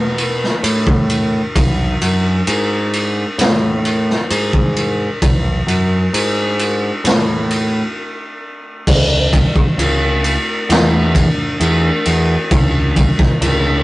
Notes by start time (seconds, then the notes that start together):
Already playing: B2
0.18 ride
0.44 snare
0.63 A2, ride
0.87 kick
1.10 ride
1.56 B1, kick, ride
2.02 F#2, ride
2.47 G#2, ride
2.93 ride
3.38 A2, snare, ride
3.85 ride
4.10 snare
4.30 G#2, ride
4.53 kick
4.76 ride
5.22 B1, kick, ride
5.67 F#2, ride
6.13 G#2, ride
6.59 ride
7.04 A2, snare, ride
7.51 ride
8.87 C#2, kick, crash
9.33 kick, ride
9.56 kick
9.78 C#2, ride
10.24 ride
10.69 E2, snare, ride
11.15 kick, ride
11.60 E2, ride
12.05 E2, ride
12.51 C#2, kick, ride
12.96 kick, ride
13.19 kick, snare
13.41 C#2, ride